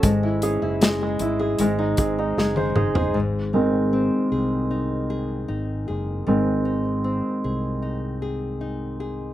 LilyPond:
<<
  \new Staff \with { instrumentName = "Grand piano" } { \time 4/4 \key gis \phrygian \tempo 4 = 77 gis16 e'16 gis'16 e'16 gis'16 gis16 e'16 gis'16 gis16 dis'16 gis'16 dis'16 gis'16 bis'16 gis'16 bis'16 | r8 <dis gis bis>4. r2 | <dis gis bis>8. r2. r16 | }
  \new Staff \with { instrumentName = "Nylon-string guitar" } { \time 4/4 \key gis \phrygian gis,16 e'16 cis'16 e'16 gis16 gis'16 e'16 gis'16 gis,16 dis'16 bis16 dis'16 gis16 gis'16 dis'16 gis'16 | gis,8 dis'8 bis8 gis'8 dis'8 gis'8 dis'8 gis'8 | gis,8 dis'8 bis8 gis'8 dis'8 gis'8 dis'8 gis'8 | }
  \new Staff \with { instrumentName = "Fingered electric bass" } { \clef bass \time 4/4 \key gis \phrygian gis,,8. fis,,8. gis,,8 gis,,8 gis,,8 fis,,8 fis,,8 | gis,,4~ gis,,16 r16 bis,,4. gis,,8 fis,,8 | gis,,4~ gis,,16 r16 bis,,2~ bis,,8 | }
  \new DrumStaff \with { instrumentName = "Drums" } \drummode { \time 4/4 <hh bd>8 hh8 <hh sn>8 hh8 hh8 <hh bd>8 sn16 tommh16 toml16 tomfh16 | r4 r4 r4 r4 | r4 r4 r4 r4 | }
>>